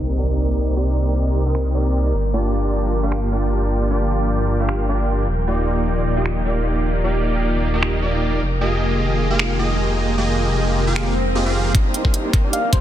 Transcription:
Already playing: detuned saw bass C2, analog synth pad A#3, supersaw synth C4 D#4 G4 A#4 D#5, harp C4 D4 G#4, impact
0.09 harp A#3
0.18 supersaw synth C4 D#4 G4 A#4 D5
0.28 harp D4
0.48 harp A#3
0.68 harp A#3
0.76 supersaw synth C4 D#4 G4 A#4 D5
0.87 harp D4
1.07 harp A#3
1.26 harp A#3
1.46 supersaw synth C4 D#4 G4 A#4 D#5, harp D4
1.55 finger snap
1.66 harp A#3
1.75 supersaw synth C4 D#4 G4 A#4 D5
1.85 harp A#3
2.05 harp D4
2.14 detuned saw bass G1, analog synth pad F3 G5
2.25 harp A#3
2.33 supersaw synth A#3 D4 F4 G4 D5
2.44 harp A#3
2.64 harp F4
2.83 harp A#3
3.03 harp A#3, supersaw synth A#3 D4 F4 G4 F5
3.12 finger snap
3.23 harp F4
3.32 supersaw synth A#3 D4 F4 G4 D5
3.42 harp A#3
3.62 harp A#3
3.81 harp F4
3.90 supersaw synth A#3 D4 F4 G4 D5
4.01 harp A#3
4.21 harp A#3
4.40 harp F4
4.60 harp A#3, supersaw synth A#3 D4 F4 G4 F5
4.69 finger snap
4.79 harp A#3
4.89 supersaw synth A#3 D4 F4 G4 D5
4.99 harp F4
5.19 harp A#3
5.28 detuned saw bass D#1, analog synth pad D5
5.38 harp A#3
5.47 supersaw synth A#3 D#4 F4 G4 D5
5.58 harp D#4
5.78 harp A#3
5.97 harp A#3
6.16 supersaw synth A#3 D#4 F4 G4 D#5, harp D#4
6.26 finger snap
6.36 harp A#3
6.45 supersaw synth A#3 D#4 F4 G4 D5
6.56 harp A#3
6.75 harp D#4
6.95 harp A#3
7.04 supersaw synth A#3 D#4 F4 G4 D5
7.15 harp A#3
7.34 harp D#4
7.54 harp A#3
7.74 supersaw synth A#3 D#4 F4 G4 D#5, harp A#3
7.83 finger snap
7.93 harp D#4
8.02 supersaw synth A#3 D#4 F4 G4 D5
8.13 harp A#3
8.33 harp A#3
8.41 detuned saw bass F1, analog synth pad D#3 G#3 A#3
8.52 harp D#4
8.61 supersaw synth A#3 F4 G4 G#4 D#5
8.72 harp A#3
8.91 harp A#3
9.11 harp D#4
9.30 supersaw synth A#3 F4 G4 G#4 F5, harp A#3
9.39 finger snap
9.50 harp A#3
9.59 supersaw synth A#3 F4 G4 G#4 D#5
9.70 harp D#4
9.89 harp A#3
10.09 harp A#3
10.18 supersaw synth A#3 F4 G4 G#4 D#5
10.28 harp D#4
10.48 harp A#3
10.68 harp A#3
10.87 supersaw synth A#3 F4 G4 G#4 F5, harp D#4
10.96 finger snap, swell
11.07 harp A#3
11.16 harp C4
11.35 supersaw synth A#3 F4 G4 G#4 D#5, harp G#4
11.46 supersaw synth A#3 F4 G4 G#4 F5
11.55 harp G#4
11.74 detuned saw bass C2, supersaw synth A#3 D4 D#4 C5, analog synth pad A#3, kick, closed hi-hat, riser
11.85 harp A#3
11.94 closed hi-hat
12.05 harp A#3, kick
12.14 closed hi-hat
12.24 harp D4
12.33 kick, closed hi-hat
12.44 detuned saw bass C2, supersaw synth A#3 D4 D#4 G4 D5, harp A#3
12.53 soft synth lead F5, closed hi-hat
12.64 harp A#3
12.73 detuned saw bass C2, supersaw synth A#3 D4 D#4 G4 C5, soft synth lead C5, kick, closed hi-hat

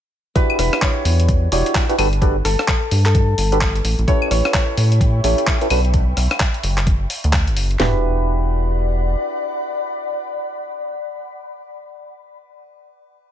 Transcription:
0.35 synth stab D4 E4 F#4 G4 B4, harp B4, kick, closed hi-hat
0.50 claves
0.59 analog synth bass E1, harp B4, cross-stick, open hi-hat
0.73 cross-stick, claves
0.82 harp C#5, kick, clap, closed hi-hat
1.05 analog synth bass E2, open hi-hat
1.20 closed hi-hat
1.29 kick, closed hi-hat
1.52 analog synth bass E1, synth stab D4 E4 F#4 G4 C#5, open hi-hat
1.66 closed hi-hat
1.75 kick, clap
1.89 synth stab D4 E4 F#4 G4 B4, closed hi-hat
1.98 analog synth bass G1, synth stab D4 F#4 G4 A4 B4, open hi-hat, claves
2.13 closed hi-hat
2.22 synth stab D4 F#4 G4 A4 B4, kick, closed hi-hat
2.45 analog synth bass G1, harp A4, cross-stick, open hi-hat
2.59 cross-stick
2.68 kick, clap, closed hi-hat
2.91 analog synth bass G2, open hi-hat
3.05 harp A4, clap, closed hi-hat
3.15 kick, closed hi-hat
3.38 analog synth bass G1, open hi-hat
3.52 synth stab D4 F#4 G4 A4 B4, closed hi-hat
3.61 kick, clap
3.76 closed hi-hat
3.84 analog synth bass A1, open hi-hat
3.99 analog synth bass A1, closed hi-hat
4.08 synth stab C#4 E4 G4 A4 B4, harp C#5, ambient pad E5 G5 B5 C#6, kick, closed hi-hat
4.22 claves
4.31 analog synth bass A1, harp C#5, cross-stick, open hi-hat
4.45 cross-stick, claves
4.54 harp C#5, kick, clap, closed hi-hat
4.77 analog synth bass A2, open hi-hat
4.92 closed hi-hat
5.01 kick, closed hi-hat
5.24 analog synth bass A1, synth stab C#4 E4 G4 A4 C#5, open hi-hat
5.38 closed hi-hat
5.47 kick, clap
5.61 synth stab C#4 E4 G4 A4 B4, closed hi-hat
5.70 analog synth bass B1, synth stab C#4 D4 F#4 A4 B4, open hi-hat, claves
5.85 closed hi-hat
5.94 kick, closed hi-hat
6.17 analog synth bass B1, cross-stick, open hi-hat
6.31 cross-stick, claves
6.40 kick, clap, closed hi-hat
6.54 closed hi-hat
6.63 analog synth bass F#1, open hi-hat
6.78 clap, closed hi-hat
6.87 kick, closed hi-hat
7.10 open hi-hat
7.24 analog synth bass D2, closed hi-hat
7.33 kick, clap
7.47 analog synth bass F#1, closed hi-hat
7.57 open hi-hat
7.71 closed hi-hat
7.80 analog synth bass E1, synth stab D4 E4 F#4 G4 B4, harp B4, ambient pad D5 F#5 B5, snare, floor tom

